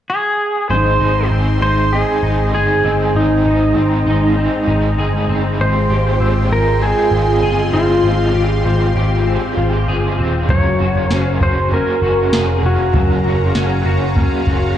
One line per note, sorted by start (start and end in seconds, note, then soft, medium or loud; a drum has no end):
0.10 0.70 G#4 medium
0.69 0.97 G#1 medium
0.69 1.00 G#2 medium
0.69 1.00 D#3 medium
0.69 10.46 G#3 medium
0.69 1.01 G#3 medium
0.69 1.01 C4 medium
0.69 1.00 D#4 medium
0.69 0.98 G#4 medium
0.69 5.56 C5 medium
0.69 1.27 C5 medium
0.69 5.56 D#5 medium
0.69 3.12 C6 medium
1.00 1.27 G#1 medium
1.00 1.31 C4 soft
1.00 1.31 D#4 soft
1.00 1.31 G#4 medium
1.05 1.30 G#3 soft
1.30 1.58 G#1 medium
1.30 1.61 G#2 medium
1.30 1.61 D#3 medium
1.30 1.62 G#3 medium
1.30 1.62 C4 medium
1.30 1.62 D#4 medium
1.30 1.60 G#4 medium
1.61 2.02 G#1 medium
1.61 1.92 C4 soft
1.61 1.93 D#4 soft
1.61 1.92 G#4 soft
1.61 1.93 C5 medium
1.66 1.90 G#3 soft
1.92 2.22 G#3 medium
1.92 2.23 C4 medium
1.92 2.23 D#4 medium
1.92 2.53 G#4 medium
1.96 2.21 G#4 medium
2.22 2.50 G#1 medium
2.22 2.54 C4 soft
2.22 2.54 D#4 soft
2.22 2.53 G#4 soft
2.27 2.53 G#3 soft
2.53 2.80 G1 medium
2.53 2.84 D#3 medium
2.53 2.84 G#3 medium
2.53 2.85 C4 medium
2.53 2.84 D#4 medium
2.53 3.17 G#4 medium
2.53 2.82 G#4 medium
2.83 3.11 G1 medium
2.83 3.15 C4 soft
2.83 3.15 D#4 soft
2.83 3.14 G#4 medium
2.88 3.14 G#3 soft
3.14 3.42 G#1 medium
3.14 3.45 G#2 medium
3.14 3.45 D#3 medium
3.14 3.45 G#3 medium
3.14 3.46 C4 medium
3.14 4.95 D#4 medium
3.14 3.44 D#4 medium
3.14 3.43 G#4 medium
3.14 5.58 A#5 medium
3.44 3.72 G#1 medium
3.44 3.76 C4 soft
3.44 3.76 D#4 medium
3.44 3.75 G#4 medium
3.49 3.76 G#3 soft
3.75 4.03 G#1 medium
3.75 4.06 G#2 medium
3.75 4.06 D#3 medium
3.75 4.07 G#3 medium
3.75 4.07 C4 medium
3.75 4.06 D#4 medium
3.75 4.04 G#4 medium
4.05 4.47 G#1 medium
4.05 4.37 C4 soft
4.05 4.38 D#4 soft
4.05 4.36 G#4 soft
4.11 4.35 G#3 soft
4.36 4.67 G#3 medium
4.36 4.68 C4 medium
4.36 4.67 D#4 medium
4.41 4.65 G#4 medium
4.66 4.95 G#1 medium
4.66 4.98 C4 soft
4.66 4.98 D#4 medium
4.66 4.98 G#4 soft
4.71 4.97 G#3 soft
4.98 5.25 G1 medium
4.98 5.29 D#3 medium
4.98 5.29 G#3 medium
4.98 5.29 C4 medium
4.98 5.29 D#4 medium
4.98 5.27 G#4 medium
5.28 5.56 G1 medium
5.28 5.60 C4 medium
5.28 5.60 D#4 medium
5.28 5.59 G#4 medium
5.33 5.59 G#3 soft
5.59 5.86 G#1 medium
5.59 5.90 G#2 medium
5.59 5.90 F3 medium
5.59 5.90 G#3 medium
5.59 5.91 C4 medium
5.59 10.45 F4 medium
5.59 5.90 G4 medium
5.59 5.88 G#4 medium
5.59 6.52 C5 medium
5.59 8.02 G5 medium
5.59 10.45 C6 medium
5.89 6.17 G#1 medium
5.89 6.20 C4 soft
5.89 6.21 G4 medium
5.89 6.20 G#4 soft
5.94 6.20 G#3 soft
6.19 6.47 G#1 loud
6.19 6.51 G#2 medium
6.19 6.51 F3 medium
6.19 6.51 G#3 medium
6.19 6.52 C4 medium
6.19 6.51 G4 medium
6.19 6.49 G#4 medium
6.50 6.91 G#1 medium
6.50 6.81 C4 soft
6.50 6.82 G4 soft
6.50 6.81 G#4 soft
6.50 6.83 A#4 medium
6.55 6.79 G#3 soft
6.80 7.12 G#3 medium
6.80 7.13 C4 medium
6.80 7.77 G#4 medium
6.85 7.10 G#4 medium
7.11 7.39 G#1 loud
7.11 7.43 C4 soft
7.11 7.42 G#4 medium
7.16 7.42 G#3 soft
7.42 7.69 G1 medium
7.42 7.73 F3 medium
7.42 7.74 G#3 medium
7.42 7.74 C4 medium
7.42 7.71 G#4 medium
7.72 8.00 G1 medium
7.72 8.04 C4 soft
7.72 8.92 F4 medium
7.72 8.04 G4 medium
7.72 8.04 G#4 medium
7.77 8.03 G#3 soft
8.03 8.31 G#1 medium
8.03 8.34 G#2 medium
8.03 8.35 F3 medium
8.03 8.35 G#3 medium
8.03 8.35 C4 medium
8.03 8.34 G4 medium
8.03 8.32 G#4 medium
8.03 14.78 F5 medium
8.34 8.62 G#1 medium
8.34 8.65 C4 soft
8.34 8.66 G4 soft
8.34 8.65 G#4 medium
8.39 8.65 G#3 soft
8.64 8.92 G#1 medium
8.64 8.96 G#2 medium
8.64 8.96 F3 medium
8.64 8.96 G#3 medium
8.64 8.97 C4 medium
8.64 8.96 G4 medium
8.64 8.94 G#4 medium
8.95 9.36 G#1 medium
8.95 9.26 C4 soft
8.95 9.27 G4 soft
8.95 9.26 G#4 medium
9.00 9.24 G#3 soft
9.25 9.57 G#3 medium
9.25 9.58 C4 medium
9.25 9.57 G4 medium
9.30 9.55 G#4 medium
9.56 9.84 G#1 medium
9.56 9.88 C4 soft
9.56 9.73 F4 soft
9.56 9.88 G4 soft
9.56 9.87 G#4 soft
9.61 9.88 G#3 soft
9.73 10.55 G4 soft
9.88 10.15 G1 medium
9.88 10.19 F3 medium
9.88 10.19 G#3 medium
9.88 10.19 C4 medium
9.88 10.18 G4 medium
9.88 10.17 G#4 medium
10.18 10.45 D#1 medium
10.18 10.50 C4 medium
10.18 10.50 G4 medium
10.18 10.49 G#4 medium
10.23 10.49 G#3 soft
10.49 10.76 F#1 medium
10.49 10.80 F#3 medium
10.49 10.80 A#3 medium
10.49 10.81 C#4 medium
10.49 14.78 F#4 medium
10.49 10.81 F#4 medium
10.49 10.78 G#4 medium
10.49 14.78 A#4 medium
10.49 11.14 C#5 medium
10.49 14.78 A#5 medium
10.49 kick loud
10.49 floor tom loud
10.79 11.07 F#1 loud
10.79 11.11 F#4 soft
10.79 11.10 G#4 medium
10.84 11.11 C#4 soft
10.95 floor tom medium
11.10 11.37 F#1 medium
11.10 11.41 F#3 medium
11.10 11.42 A#3 medium
11.10 11.42 C#4 medium
11.10 11.42 F#4 medium
11.10 11.40 G#4 medium
11.10 11.42 C5 medium
11.10 snare medium
11.41 11.81 F#1 medium
11.41 11.73 F#4 soft
11.41 11.72 G#4 soft
11.41 11.73 C5 medium
11.41 kick medium
11.41 floor tom medium
11.46 11.72 C#4 soft
11.71 12.02 A#3 medium
11.71 12.03 C#4 soft
11.71 12.03 F#4 medium
11.71 12.67 A#4 medium
11.71 floor tom medium
11.76 12.01 G#4 medium
12.02 12.29 F#1 medium
12.02 12.34 F#4 soft
12.02 12.33 G#4 soft
12.07 12.33 C#4 soft
12.32 12.60 F1 medium
12.32 12.63 F#3 medium
12.32 12.64 A#3 medium
12.32 12.64 C#4 medium
12.32 12.64 F#4 medium
12.32 12.61 G#4 medium
12.32 snare loud
12.63 12.90 F1 medium
12.63 12.95 F#4 soft
12.63 13.83 F#4 medium
12.63 12.94 G#4 medium
12.63 floor tom medium
12.68 12.94 C#4 soft
12.79 floor tom medium
12.94 13.21 F#1 medium
12.94 13.25 F#3 medium
12.94 13.25 A#3 medium
12.94 13.26 C#4 medium
12.94 13.26 F#4 medium
12.94 13.23 G#4 medium
12.94 kick loud
12.94 floor tom loud
13.24 13.52 F#1 medium
13.24 13.56 F#4 soft
13.24 13.55 G#4 medium
13.29 13.55 C#4 soft
13.40 floor tom medium
13.54 13.82 F#1 medium
13.54 13.85 F#3 medium
13.54 13.86 A#3 medium
13.54 13.86 C#4 medium
13.54 13.86 F#4 medium
13.54 13.84 G#4 medium
13.54 snare medium
13.85 14.26 F#1 medium
13.85 14.17 F#4 soft
13.85 14.16 G#4 soft
13.85 floor tom medium
13.90 14.16 C#4 soft
14.16 14.47 A#3 medium
14.16 14.48 C#4 medium
14.16 14.48 F#4 medium
14.16 kick medium
14.16 floor tom medium
14.21 14.45 G#4 medium
14.46 14.74 F#1 medium
14.46 14.78 F#4 soft
14.46 14.77 G#4 medium
14.46 kick medium
14.51 14.78 C#4 soft